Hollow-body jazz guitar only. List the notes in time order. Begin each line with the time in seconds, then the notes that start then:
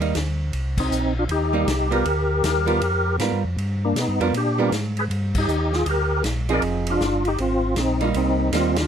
0.01 G3 A#3 D#4
1.53 G3 A#3 D#4
1.91 G3 B3 F4 A#4
2.66 G3 B3 F4 A#4
3.20 G3 B3 F4 A#4
4.20 G3 B3 F4 A#4
4.58 G3 B3 F4 A#4
6.49 F3 C4 D#4 G#4
8.01 G3 A#3 D#4
8.52 G3 A#3 D#4